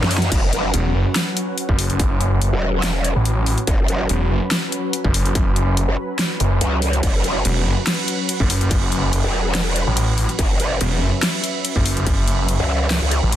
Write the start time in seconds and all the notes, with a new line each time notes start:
Already playing: F#3 C#4 C#5 E5
0.01 F#2, snare
0.11 open hi-hat
0.18 snare
0.22 closed hi-hat
0.32 F#1 B4 F#5, kick, closed hi-hat, crash
0.53 F#1, closed hi-hat
0.74 E1, closed hi-hat
0.95 F#1
1.16 snare, clap, closed hi-hat
1.37 closed hi-hat
1.58 closed hi-hat
1.69 F#1, kick
1.79 open hi-hat
1.90 F#1, closed hi-hat
2.00 kick, closed hi-hat
2.21 closed hi-hat
2.42 closed hi-hat
2.53 E1
2.83 snare, clap, closed hi-hat
3.04 closed hi-hat
3.16 A1
3.25 closed hi-hat
3.46 open hi-hat
3.58 closed hi-hat
3.67 F#1 B5, kick, closed hi-hat
3.88 F#1, closed hi-hat
4.09 E1, closed hi-hat
4.30 F#1
4.51 snare, clap, closed hi-hat
4.72 closed hi-hat
4.93 closed hi-hat
5.04 F#1, kick
5.14 open hi-hat
5.25 F#1, closed hi-hat
5.35 kick, closed hi-hat
5.56 closed hi-hat
5.77 closed hi-hat
5.88 F#1
6.19 snare, clap, closed hi-hat
6.40 F#1, closed hi-hat
6.61 C#2, closed hi-hat
6.82 open hi-hat
6.93 closed hi-hat
7.03 F#1 F#5, kick, closed hi-hat, crash
7.24 F#1, closed hi-hat
7.45 E1, closed hi-hat, crash
7.66 F#1
7.87 snare, clap, closed hi-hat, crash
8.08 closed hi-hat
8.29 closed hi-hat, crash
8.40 F#1, kick
8.50 open hi-hat
8.61 F#1, closed hi-hat
8.71 kick, closed hi-hat, crash
8.92 closed hi-hat
9.13 closed hi-hat, crash
9.24 E1
9.55 snare, clap, closed hi-hat, crash
9.76 closed hi-hat
9.87 A1
9.97 closed hi-hat, crash
10.18 open hi-hat
10.29 closed hi-hat
10.39 F#1 E5, kick, closed hi-hat, crash
10.60 F#1, closed hi-hat
10.81 E1, closed hi-hat, crash
11.02 F#1
11.23 snare, clap, closed hi-hat, crash
11.44 closed hi-hat
11.65 closed hi-hat, crash
11.76 F#1, kick
11.86 open hi-hat
11.97 F#1, closed hi-hat
12.07 kick, closed hi-hat, crash
12.28 closed hi-hat
12.49 closed hi-hat, crash
12.60 C#2
12.91 snare, clap, closed hi-hat, crash
13.02 C#2
13.11 closed hi-hat
13.23 A1
13.32 closed hi-hat, crash